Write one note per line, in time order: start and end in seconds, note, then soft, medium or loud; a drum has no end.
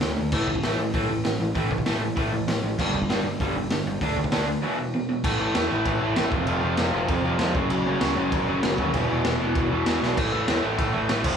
0.01 0.13 D2 loud
0.01 0.15 D3 medium
0.01 0.16 A3 medium
0.01 snare loud
0.01 open hi-hat medium
0.17 0.29 D2 medium
0.17 0.31 D3 medium
0.17 0.31 A3 medium
0.32 0.44 A1 medium
0.32 0.47 A2 medium
0.32 0.47 E3 medium
0.32 0.48 A3 medium
0.32 kick loud
0.32 crash loud
0.48 0.59 A1 medium
0.48 0.62 A2 medium
0.48 0.62 E3 medium
0.48 kick medium
0.55 kick loud
0.63 0.75 A1 medium
0.63 0.77 A2 medium
0.63 0.78 E3 medium
0.63 0.78 A3 loud
0.63 snare loud
0.63 open hi-hat medium
0.79 0.90 A1 medium
0.79 0.93 A2 medium
0.79 0.93 E3 medium
0.94 1.05 A1 medium
0.94 1.08 A2 medium
0.94 1.08 E3 medium
0.94 1.09 A3 loud
0.94 kick loud
0.94 open hi-hat medium
1.09 1.21 A1 medium
1.09 1.23 A2 medium
1.09 1.23 E3 medium
1.24 1.36 A1 loud
1.24 1.38 A2 medium
1.24 1.39 E3 medium
1.24 snare loud
1.24 open hi-hat medium
1.40 1.51 A1 loud
1.40 1.54 A2 medium
1.40 1.54 E3 medium
1.55 1.67 A1 loud
1.55 1.70 A2 medium
1.55 1.70 E3 loud
1.55 1.70 A3 medium
1.55 kick loud
1.55 open hi-hat medium
1.71 1.82 A1 medium
1.71 1.85 A2 medium
1.71 1.85 E3 medium
1.71 kick medium
1.78 kick medium
1.86 2.09 A1 loud
1.86 2.00 A2 loud
1.86 2.00 E3 medium
1.86 2.01 A3 loud
1.86 snare loud
1.86 open hi-hat medium
2.01 2.15 A2 medium
2.01 2.15 E3 medium
2.16 2.28 A1 loud
2.16 2.31 A2 loud
2.16 2.31 E3 medium
2.16 2.31 A3 medium
2.16 kick loud
2.16 open hi-hat medium
2.32 2.44 A1 medium
2.32 2.46 A2 medium
2.32 2.46 E3 medium
2.48 2.59 A1 loud
2.48 2.62 A2 medium
2.48 2.62 E3 medium
2.48 snare loud
2.48 open hi-hat medium
2.63 2.74 A1 loud
2.63 2.77 A2 medium
2.63 2.77 E3 medium
2.78 2.90 G1 medium
2.78 2.93 G2 medium
2.78 2.93 D3 loud
2.78 2.94 G3 loud
2.78 kick loud
2.78 crash loud
2.94 3.05 G1 medium
2.94 3.08 G2 medium
2.94 3.08 D3 medium
2.94 kick medium
3.02 kick medium
3.08 3.20 G1 medium
3.08 3.24 G2 medium
3.08 3.24 D3 loud
3.08 3.24 G3 loud
3.08 snare loud
3.08 open hi-hat medium
3.23 3.35 G1 medium
3.23 3.39 G2 medium
3.23 3.39 D3 medium
3.40 3.52 G1 loud
3.40 3.55 G2 medium
3.40 3.55 D3 medium
3.40 3.55 G3 loud
3.40 kick loud
3.40 open hi-hat medium
3.55 3.66 G1 medium
3.55 3.70 G2 medium
3.55 3.70 D3 medium
3.70 3.82 G1 loud
3.70 3.85 G2 medium
3.70 3.85 D3 medium
3.70 snare loud
3.70 open hi-hat medium
3.86 3.97 G1 medium
3.86 4.01 G2 medium
3.86 4.01 D3 medium
4.01 4.13 D2 loud
4.01 4.15 D3 loud
4.01 4.16 A3 medium
4.01 4.17 D4 loud
4.01 kick loud
4.01 open hi-hat medium
4.16 4.28 D2 medium
4.16 4.31 D3 medium
4.16 4.31 A3 medium
4.16 kick medium
4.24 kick loud
4.32 4.55 D2 medium
4.32 4.46 D3 loud
4.32 4.47 A3 loud
4.32 4.47 D4 loud
4.32 snare loud
4.32 open hi-hat medium
4.48 4.62 D3 medium
4.48 4.62 A3 medium
4.62 4.77 E2 loud
4.62 4.77 B2 loud
4.62 4.78 E3 loud
4.78 4.92 E2 medium
4.78 4.92 B2 medium
4.94 5.08 E2 medium
4.94 5.08 B2 medium
5.09 5.23 E2 medium
5.09 5.23 B2 medium
5.24 5.48 A1 loud
5.24 5.40 A2 medium
5.24 5.39 E3 loud
5.24 5.39 A3 loud
5.24 kick loud
5.24 crash loud
5.24 crash medium
5.40 5.54 A2 medium
5.40 5.55 E3 medium
5.40 5.56 A3 loud
5.55 5.67 E2 medium
5.55 5.71 A2 medium
5.55 5.70 E3 medium
5.55 5.70 A3 medium
5.55 snare loud
5.55 crash medium
5.71 5.83 A1 loud
5.71 5.85 A2 medium
5.71 5.85 E3 loud
5.71 5.87 A3 loud
5.85 5.98 A1 loud
5.85 6.01 A2 medium
5.85 6.01 E3 loud
5.85 6.01 A3 loud
5.85 kick loud
5.85 crash medium
6.01 6.13 A1 medium
6.01 6.16 A2 medium
6.01 6.16 E3 loud
6.01 6.18 A3 loud
6.16 6.29 A1 loud
6.16 6.31 A2 medium
6.16 6.32 E3 loud
6.16 8.98 A3 loud
6.16 snare loud
6.16 crash medium
6.32 6.44 F1 medium
6.32 6.48 F2 loud
6.32 6.47 C3 loud
6.32 6.47 F3 loud
6.32 kick loud
6.47 6.60 F1 medium
6.47 6.62 F2 medium
6.47 6.62 C3 loud
6.47 6.63 F3 loud
6.47 crash medium
6.63 6.75 F1 medium
6.63 6.77 F2 medium
6.63 6.76 C3 loud
6.63 6.76 F3 medium
6.77 6.90 F1 medium
6.77 6.92 F2 medium
6.77 6.93 C3 medium
6.77 6.93 F3 medium
6.77 snare loud
6.77 crash medium
6.93 7.05 F1 loud
6.93 7.08 F2 loud
6.93 7.08 C3 loud
6.93 7.08 F3 loud
7.08 7.21 F1 medium
7.08 7.23 F2 medium
7.08 7.23 C3 medium
7.08 7.24 F3 loud
7.08 kick loud
7.08 crash medium
7.24 7.36 F1 loud
7.24 7.39 F2 loud
7.24 7.39 C3 loud
7.24 7.38 F3 loud
7.39 7.51 F2 loud
7.39 7.54 F2 medium
7.39 7.54 C3 loud
7.39 7.54 F3 loud
7.39 snare loud
7.39 crash medium
7.54 7.67 F#1 medium
7.54 7.70 F#2 loud
7.54 7.69 C#3 loud
7.54 7.69 F#3 loud
7.54 kick loud
7.70 7.94 F#1 loud
7.70 7.85 F#2 loud
7.70 7.85 C#3 medium
7.70 7.86 F#3 loud
7.70 crash medium
7.87 8.01 F#2 medium
7.87 8.00 C#3 loud
7.87 8.00 F#3 loud
8.01 8.13 C#2 medium
8.01 8.15 F#2 medium
8.01 8.16 C#3 loud
8.01 8.16 F#3 loud
8.01 snare loud
8.01 crash medium
8.17 8.29 F#1 loud
8.17 8.31 F#2 loud
8.17 8.31 C#3 loud
8.17 8.31 F#3 loud
8.32 8.44 F#1 loud
8.32 8.46 F#2 medium
8.32 8.47 C#3 loud
8.32 8.47 F#3 loud
8.32 kick loud
8.32 crash medium
8.48 8.60 F#1 loud
8.48 8.63 F#2 loud
8.48 8.63 C#3 loud
8.48 8.62 F#3 loud
8.63 8.75 F#1 loud
8.63 8.78 F#2 medium
8.63 8.78 C#3 medium
8.63 8.78 F#3 loud
8.63 snare loud
8.63 crash medium
8.78 8.90 D#2 loud
8.78 8.93 F#2 medium
8.78 8.93 C#3 loud
8.78 8.94 F#3 loud
8.78 kick medium
8.94 9.06 E1 loud
8.94 9.09 E2 medium
8.94 9.08 B2 loud
8.94 9.09 E3 loud
8.94 kick loud
8.94 crash medium
9.09 9.22 E1 loud
9.09 9.24 E2 medium
9.09 9.24 B2 loud
9.09 9.25 E3 loud
9.25 9.37 E1 medium
9.25 9.40 E2 medium
9.25 9.40 B2 medium
9.25 9.39 E3 loud
9.25 snare loud
9.25 crash medium
9.41 9.53 E1 medium
9.41 9.55 E2 medium
9.41 9.55 B2 loud
9.41 9.56 E3 loud
9.55 9.67 E1 loud
9.55 9.70 E2 medium
9.55 9.70 B2 medium
9.55 9.69 E3 loud
9.55 kick loud
9.55 crash medium
9.71 9.83 E1 loud
9.71 9.85 E2 loud
9.71 9.85 B2 loud
9.71 9.86 E3 loud
9.86 10.01 E2 medium
9.86 9.99 E2 loud
9.86 10.00 B2 medium
9.86 10.00 E3 loud
9.86 snare loud
9.86 crash medium
10.01 10.14 B1 medium
10.01 10.16 E2 medium
10.01 10.16 B2 medium
10.01 10.16 E3 medium
10.01 snare medium
10.16 10.41 A1 loud
10.16 10.32 A2 loud
10.16 10.31 E3 loud
10.16 10.32 A3 loud
10.16 kick loud
10.16 crash loud
10.16 crash medium
10.32 10.46 A2 medium
10.32 10.46 E3 loud
10.32 10.47 A3 loud
10.47 10.60 E2 loud
10.47 10.63 A2 medium
10.47 10.62 E3 medium
10.47 10.62 A3 medium
10.47 snare loud
10.47 crash medium
10.63 10.75 A1 medium
10.63 10.76 A2 medium
10.63 10.77 E3 loud
10.63 10.78 A3 loud
10.78 10.91 A1 loud
10.78 10.93 A2 loud
10.78 10.92 E3 medium
10.78 10.93 A3 loud
10.78 kick loud
10.78 crash medium
10.93 11.06 A1 loud
10.93 11.08 A2 loud
10.93 11.08 E3 loud
10.93 11.09 A3 loud
11.09 11.22 A1 loud
11.09 11.24 A2 medium
11.09 11.24 E3 medium
11.09 11.37 A3 loud
11.09 snare loud
11.09 crash medium
11.24 11.36 F1 medium
11.24 11.37 F2 loud
11.24 11.37 C3 loud
11.24 11.37 F3 loud
11.24 kick loud
11.24 crash loud